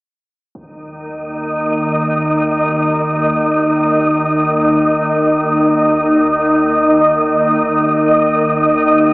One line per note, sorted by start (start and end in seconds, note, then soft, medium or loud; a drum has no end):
0.55 9.13 D#2 medium
0.55 9.13 D#3 medium
0.55 9.13 D#4 medium
0.55 9.13 D#5 medium
0.55 impact medium
1.14 9.13 A#4 medium
2.69 impact soft
4.03 9.13 D#5 medium